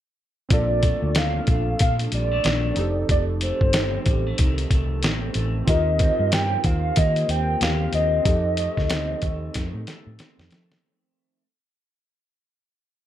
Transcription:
0.49 fingered electric bass A#1, clean electric guitar A#2, synth keys C4 D4 F4, soft synth lead D5, kick, closed hi-hat
0.54 synth keys A4
0.83 clean electric guitar A3, kick, closed hi-hat
1.02 fingered electric bass D2
1.15 clean electric guitar D4, soft synth lead F5, snare, closed hi-hat
1.47 fingered electric bass A#1, clean electric guitar A3, kick, closed hi-hat
1.79 fingered electric bass A#2, clean electric guitar F3, soft synth lead F5, kick, closed hi-hat
1.99 closed hi-hat
2.12 fingered electric bass A#1, clean electric guitar G3, soft synth lead D5, closed hi-hat
2.31 clean electric guitar A3
2.44 fingered electric bass A#1, clean electric guitar D4, snare, closed hi-hat
2.74 fingered electric bass F1, clean electric guitar F2, synth keys C4 D#4 G4, closed hi-hat
2.80 synth keys A4
3.09 fingered electric bass F1, clean electric guitar F2, soft synth lead D5, kick, closed hi-hat
3.41 clean electric guitar A3, soft synth lead C5, closed hi-hat
3.61 fingered electric bass G1, kick
3.73 clean electric guitar C4, snare, closed hi-hat
4.06 fingered electric bass A1, clean electric guitar G3, kick, closed hi-hat
4.27 clean electric guitar A3
4.38 fingered electric bass C2, clean electric guitar D#3, kick, closed hi-hat
4.58 closed hi-hat
4.71 fingered electric bass C2, clean electric guitar A3, kick, closed hi-hat
5.03 fingered electric bass A1, clean electric guitar C4, snare, closed hi-hat
5.34 fingered electric bass A1, clean electric guitar A3, closed hi-hat
5.65 fingered electric bass D#2, clean electric guitar D#3, synth keys C4 F4 G4, soft synth lead D#5, kick, closed hi-hat
5.70 synth keys A#4
5.99 clean electric guitar C4, kick, closed hi-hat
6.19 fingered electric bass G2
6.32 clean electric guitar G4, soft synth lead G5, snare, closed hi-hat
6.64 fingered electric bass D#2, clean electric guitar C4, soft synth lead F5, kick, closed hi-hat
6.96 fingered electric bass D#3, clean electric guitar A#3, soft synth lead D#5, kick, closed hi-hat
7.16 closed hi-hat
7.28 fingered electric bass D#2, clean electric guitar C4, soft synth lead G5, closed hi-hat
7.61 fingered electric bass D#2, clean electric guitar G4, soft synth lead F5, snare, closed hi-hat
7.93 fingered electric bass D#2, clean electric guitar C4, soft synth lead D#5, closed hi-hat
8.23 fingered electric bass F2, clean electric guitar F2, synth keys C4 D#4 G4, kick, closed hi-hat
8.28 synth keys A4
8.57 clean electric guitar A3, closed hi-hat
8.77 fingered electric bass D2, kick, snare
8.90 clean electric guitar C4, snare, closed hi-hat
9.22 fingered electric bass D#2, clean electric guitar A3, kick, closed hi-hat
9.54 fingered electric bass F2, clean electric guitar D#3, kick, snare, closed hi-hat
9.74 fingered electric bass A2
9.87 clean electric guitar A3, snare, closed hi-hat
10.07 fingered electric bass A2
10.19 clean electric guitar C4, snare, closed hi-hat
10.38 fingered electric bass F2, snare
10.51 fingered electric bass F3, clean electric guitar A3, snare, closed hi-hat
10.72 snare

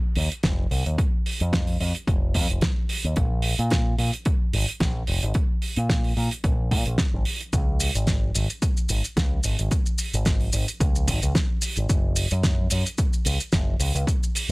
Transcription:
0.15 picked electric bass D#2, open hi-hat
0.32 closed hi-hat
0.43 picked electric bass F1, kick, snare, closed hi-hat
0.71 picked electric bass C2, open hi-hat
0.86 picked electric bass D#2, closed hi-hat
0.98 kick, closed hi-hat
1.26 open hi-hat
1.40 picked electric bass F2, closed hi-hat
1.53 kick, snare, closed hi-hat
1.67 open hi-hat
1.80 picked electric bass F2, open hi-hat
1.95 closed hi-hat
2.07 picked electric bass F1, kick, closed hi-hat
2.34 picked electric bass F2, kick, open hi-hat
2.50 picked electric bass F1, closed hi-hat
2.61 kick, snare, closed hi-hat
2.89 open hi-hat
3.04 picked electric bass D#2, closed hi-hat
3.16 picked electric bass A#1, kick, closed hi-hat
3.42 open hi-hat
3.59 picked electric bass A#2, closed hi-hat
3.70 kick, snare, closed hi-hat
3.98 picked electric bass A#2, open hi-hat
4.13 closed hi-hat
4.25 kick, closed hi-hat
4.53 picked electric bass G#1, open hi-hat
4.69 closed hi-hat
4.80 picked electric bass A#1, kick, snare, closed hi-hat
5.07 picked electric bass F1, open hi-hat
5.23 picked electric bass G#1, closed hi-hat
5.34 kick, closed hi-hat
5.62 open hi-hat
5.76 picked electric bass A#2, closed hi-hat
5.89 kick, snare, closed hi-hat
6.04 open hi-hat
6.17 picked electric bass A#2, open hi-hat
6.31 closed hi-hat
6.44 picked electric bass A#1, kick, closed hi-hat
6.71 picked electric bass A#2, kick, open hi-hat
6.86 picked electric bass A#1, closed hi-hat
6.98 kick, snare, closed hi-hat
7.14 picked electric bass G#1
7.25 open hi-hat
7.41 closed hi-hat
7.53 picked electric bass C#2, kick, closed hi-hat, shaker
7.80 open hi-hat, shaker
7.95 picked electric bass G#1, closed hi-hat, shaker
8.07 kick, snare, closed hi-hat, shaker
8.35 picked electric bass G#1, open hi-hat, shaker
8.50 closed hi-hat, shaker
8.62 kick, closed hi-hat, shaker
8.77 shaker
8.89 picked electric bass G#1, open hi-hat, shaker
9.04 closed hi-hat, shaker
9.17 picked electric bass C#2, kick, snare, closed hi-hat, shaker
9.43 picked electric bass G#1, open hi-hat, shaker
9.59 picked electric bass G#1, closed hi-hat, shaker
9.71 kick, closed hi-hat, shaker
9.86 shaker
9.98 open hi-hat, shaker
10.14 picked electric bass G#1, closed hi-hat, shaker
10.25 kick, snare, closed hi-hat, shaker
10.40 open hi-hat
10.53 picked electric bass G#1, open hi-hat, shaker
10.68 closed hi-hat, shaker
10.80 picked electric bass C#2, kick, closed hi-hat, shaker
10.95 shaker
11.08 picked electric bass G#1, kick, open hi-hat, shaker
11.22 picked electric bass C#2, closed hi-hat, shaker
11.35 kick, snare, closed hi-hat, shaker
11.62 open hi-hat, shaker
11.76 picked electric bass G#1, closed hi-hat, shaker
11.89 picked electric bass F#1, kick, closed hi-hat, shaker
12.16 open hi-hat, shaker
12.31 picked electric bass F#2, closed hi-hat, shaker
12.43 kick, snare, closed hi-hat, shaker
12.70 picked electric bass F#2, open hi-hat, shaker
12.86 closed hi-hat, shaker
12.98 kick, closed hi-hat, shaker
13.13 shaker
13.25 picked electric bass C#2, open hi-hat, shaker
13.40 closed hi-hat, shaker
13.52 picked electric bass F#1, kick, snare, closed hi-hat, shaker
13.80 picked electric bass C#2, open hi-hat, shaker
13.95 picked electric bass C#2, closed hi-hat, shaker
14.07 kick, closed hi-hat, shaker
14.23 shaker
14.35 open hi-hat, shaker

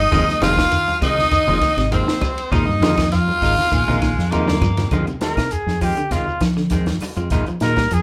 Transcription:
Already playing: tenor saxophone D#4, trumpet D#5
0.00 shekere
0.11 fingered electric bass F1, tine electric piano C3 F3 A#3 D#4, clean electric guitar D#3 G#3 C4 F4, kick, snare, ride bell, high conga, low conga, claves, shekere
0.27 muted clean electric guitar stroke, snare, high conga, shekere
0.41 fingered electric bass F1, clean electric guitar C3 D#3 G#3 C4 F4, tenor saxophone F4, snare, ride bell, high conga, shekere
0.47 trumpet F5
0.57 muted clean electric guitar stroke, kick, snare, claves, shekere
0.72 clean electric guitar D#3, ride bell, high conga, shekere
0.87 muted clean electric guitar stroke, high conga, shekere
1.01 fingered electric bass C2, clean electric guitar C3 D#3 G#3 C4 F4, tenor saxophone D#4, trumpet D#5, kick, snare, ride bell, claves, shekere
1.17 muted clean electric guitar stroke, snare, low conga, shekere
1.31 clean electric guitar D#3, muted clean electric guitar stroke, kick, ride bell, high conga, shekere
1.47 fingered electric bass F1, tine electric piano C3 F3 A#3 D#4, clean electric guitar D#3 F3 G#3 C4 F4, low conga, shekere
1.61 clean electric guitar D#3, muted clean electric guitar stroke, kick, snare, ride bell, claves, shekere
1.77 fingered electric bass G#1, clean electric guitar C3, snare, ride bell, shekere
1.91 tine electric piano C3 F3 A#3 D#4, clean electric guitar D#3 G#3 C4 F4, tenor saxophone C4, trumpet C5, ride bell, high conga, shekere
2.07 muted clean electric guitar stroke, snare, shekere
2.21 muted clean electric guitar stroke, kick, ride bell, high conga, claves, shekere
2.38 ride bell, shekere
2.51 fingered electric bass A#1, tine electric piano C3 F3 A#3 D#4, clean electric guitar D#3 G#3 D#4 F4, tenor saxophone D#4, trumpet D#5, kick, ride bell, high conga, low conga, claves, shekere
2.67 fingered electric bass G2, muted clean electric guitar stroke, high conga, shekere
2.81 fingered electric bass F2, clean electric guitar D3 D#3 G#3 D#4 F4, snare, ride bell, high conga
2.85 shekere
2.97 clean electric guitar D#3, muted clean electric guitar stroke, kick, snare, ride bell, claves, shekere
3.12 clean electric guitar F3, tenor saxophone F4, trumpet F5, snare, ride bell, high conga, shekere
3.28 muted clean electric guitar stroke, high conga, shekere
3.42 fingered electric bass G#1, clean electric guitar D#3 G#3 D#4 F4, kick, open hi-hat, claves, shekere
3.57 muted clean electric guitar stroke, snare, low conga, shekere
3.72 fingered electric bass A#1, clean electric guitar D#3, baritone saxophone G#3, muted clean electric guitar stroke, kick, ride bell, shekere
3.87 fingered electric bass A#1, tine electric piano C3 F3 A#3 D#4, clean electric guitar D#3 G#3 D#4 F4, low conga, shekere
4.02 fingered electric bass A#1, clean electric guitar D#3, muted clean electric guitar stroke, kick, snare, ride bell, claves, shekere
4.18 fingered electric bass F2, snare, shekere
4.31 tine electric piano C3 F3 A#3 F4, clean electric guitar D#3 G#3 D#4 F4, baritone saxophone A#3, ride bell, high conga, shekere
4.48 clean electric guitar D3, muted clean electric guitar stroke, snare, high conga, shekere
4.61 fingered electric bass G2, clean electric guitar F3, muted clean electric guitar stroke, kick, ride bell, low conga, claves, shekere
4.77 snare, ride bell, low conga, shekere
4.91 fingered electric bass F2, clean electric guitar D3 D#3 G#3 C4 F4, kick, closed hi-hat, high conga, low conga, claves, shekere
5.07 clean electric guitar C3, muted clean electric guitar stroke, closed hi-hat, high conga, shekere
5.21 clean electric guitar D#3 G#3 C4 F4, trumpet A#4, muted fingered electric bass stroke, snare, closed hi-hat, high conga, shekere
5.37 fingered electric bass C2, muted clean electric guitar stroke, kick, snare, closed hi-hat, claves, shekere
5.51 trumpet G#4, muted clean electric guitar stroke, closed hi-hat, high conga, shekere
5.66 fingered electric bass F2, snare, high conga, shekere
5.81 clean electric guitar D#3 F3 G#3 C4 F4, trumpet G4, kick, open hi-hat, claves, shekere
5.97 clean electric guitar D3, muted clean electric guitar stroke, closed hi-hat, shekere
6.11 fingered electric bass C2, clean electric guitar C3 D#3 G#3 C4 F4, trumpet F4, snare, closed hi-hat, shekere
6.28 muted clean electric guitar stroke, low conga, shekere
6.41 fingered electric bass F3, muted clean electric guitar stroke, kick, snare, closed hi-hat, claves, shekere
6.57 clean electric guitar D3, snare, shekere
6.70 clean electric guitar D#3 G#3 C4, muted clean electric guitar stroke, kick, snare, closed hi-hat, high conga, shekere
6.86 fingered electric bass F2, muted clean electric guitar stroke, snare, closed hi-hat, high conga, shekere
7.00 muted fingered electric bass stroke, muted clean electric guitar stroke, open hi-hat, high conga, claves, shekere
7.16 fingered electric bass F2, clean electric guitar F3 G#3 C4 F4, closed hi-hat, shekere
7.30 fingered electric bass A#1, clean electric guitar D#3 G#3 D#4 F4, kick, snare, closed hi-hat, high conga, low conga, claves, shekere
7.46 clean electric guitar F3, muted fingered electric bass stroke, muted clean electric guitar stroke, closed hi-hat, shekere
7.60 fingered electric bass A#2, clean electric guitar D#3 G#3 D#4 F4, trumpet A#4, snare, closed hi-hat, high conga, shekere
7.76 clean electric guitar G3, muted clean electric guitar stroke, kick, snare, closed hi-hat, claves, shekere
7.91 fingered electric bass F2, clean electric guitar F3, trumpet G#4, muted clean electric guitar stroke, closed hi-hat, shekere

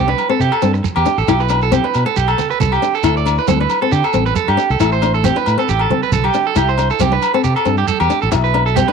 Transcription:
Already playing: fingered electric bass C2
0.08 nylon-string guitar D4, clean electric guitar B4
0.18 muted conga, low agogo, shekere
0.29 nylon-string guitar C4, clean electric guitar A4
0.40 fingered electric bass C3, clean electric guitar G4, muted conga, shekere
0.52 clean electric guitar A4, low agogo, shekere
0.62 fingered electric bass G2, nylon-string guitar C4, muted conga, high conga, shekere
0.74 muted clean electric guitar stroke, shekere
0.84 muted clean electric guitar stroke, high conga, shekere
0.96 fingered electric bass E2, clean electric guitar G4, low agogo, shekere
1.05 nylon-string guitar D4, shekere
1.18 fingered electric bass A1, clean electric guitar A4, shekere
1.28 fingered electric bass B1, nylon-string guitar E4, clean electric guitar G4, muted conga, low agogo, shekere
1.40 clean electric guitar B4, shekere
1.49 nylon-string guitar D4, low agogo, shekere
1.61 clean electric guitar A4, shekere
1.72 nylon-string guitar C4, clean electric guitar G4, high conga, shekere
1.84 nylon-string guitar D4, clean electric guitar B4
1.94 fingered electric bass B2, muted conga, low agogo, shekere
2.06 clean electric guitar A4, muted nylon-string guitar stroke
2.16 fingered electric bass B1, clean electric guitar G4, muted conga, shekere
2.28 clean electric guitar A4, low agogo, shekere
2.38 nylon-string guitar B3, muted conga, low conga, shekere
2.50 clean electric guitar B4, shekere
2.60 fingered electric bass C2, clean electric guitar A4, high conga, low conga, shekere
2.72 clean electric guitar G4, low agogo, shekere
2.82 nylon-string guitar D4, shekere
2.94 clean electric guitar A4, shekere
3.03 fingered electric bass D2, nylon-string guitar E4, clean electric guitar A4, muted conga, low agogo, shekere
3.17 clean electric guitar D5, shekere
3.26 nylon-string guitar D4, low agogo, shekere
3.38 clean electric guitar B4, shekere
3.48 fingered electric bass D2, nylon-string guitar C4, clean electric guitar A4, high conga, shekere
3.60 nylon-string guitar D4, clean electric guitar B4
3.69 muted conga, low agogo, shekere
3.82 nylon-string guitar C4, clean electric guitar A4
3.92 fingered electric bass D3, clean electric guitar G4, shekere
4.04 clean electric guitar A4, low agogo, shekere
4.13 fingered electric bass A1, nylon-string guitar C4, muted conga, high conga, shekere
4.26 clean electric guitar B4, shekere
4.35 clean electric guitar A4, high conga, shekere
4.48 fingered electric bass G2, clean electric guitar G4, low agogo, shekere
4.57 nylon-string guitar D4, shekere
4.70 fingered electric bass C2, clean electric guitar A4, shekere
4.80 fingered electric bass A1, nylon-string guitar E4, clean electric guitar A4, muted conga, low agogo, shekere
4.92 clean electric guitar C5, shekere
5.02 nylon-string guitar D4, low agogo, shekere
5.14 clean electric guitar A4, shekere
5.24 nylon-string guitar C4, clean electric guitar G4, high conga, shekere
5.36 nylon-string guitar D4, clean electric guitar B4, shekere
5.46 fingered electric bass A2, muted conga, low agogo, shekere
5.58 nylon-string guitar C4, clean electric guitar A4, shekere
5.68 fingered electric bass A1, clean electric guitar G4, muted conga, shekere
5.79 clean electric guitar A4, low agogo
5.90 nylon-string guitar C4, muted conga, high conga, low conga
6.03 clean electric guitar B4, shekere
6.12 fingered electric bass B1, clean electric guitar A4, high conga, low conga, shekere
6.24 clean electric guitar G4, low agogo
6.34 nylon-string guitar D4, shekere
6.47 clean electric guitar A4
6.56 fingered electric bass C2, nylon-string guitar E4, clean electric guitar G4, muted conga, low agogo, shekere
6.69 clean electric guitar C5, shekere
6.78 nylon-string guitar D4, low agogo, shekere
6.90 clean electric guitar A4, shekere
6.99 fingered electric bass C2, nylon-string guitar C4, clean electric guitar G4, high conga, shekere
7.12 nylon-string guitar D4, clean electric guitar B4
7.22 low agogo, shekere
7.34 nylon-string guitar C4, clean electric guitar A4
7.44 fingered electric bass C3, clean electric guitar G4, shekere
7.56 clean electric guitar A4, low agogo, shekere
7.65 fingered electric bass G2, nylon-string guitar C4, muted conga, high conga, shekere
7.77 clean electric guitar G4, shekere
7.87 clean electric guitar A4, high conga, shekere
8.00 fingered electric bass E2, clean electric guitar G4, low agogo, shekere
8.10 nylon-string guitar D4, shekere
8.22 fingered electric bass A1, clean electric guitar A4, shekere
8.32 fingered electric bass B1, nylon-string guitar E4, muted clean electric guitar stroke, low agogo, shekere
8.44 clean electric guitar B4, shekere
8.54 nylon-string guitar D4, low agogo
8.66 clean electric guitar A4, shekere
8.76 nylon-string guitar C4, clean electric guitar G4, high conga, shekere
8.88 nylon-string guitar D4, clean electric guitar B4

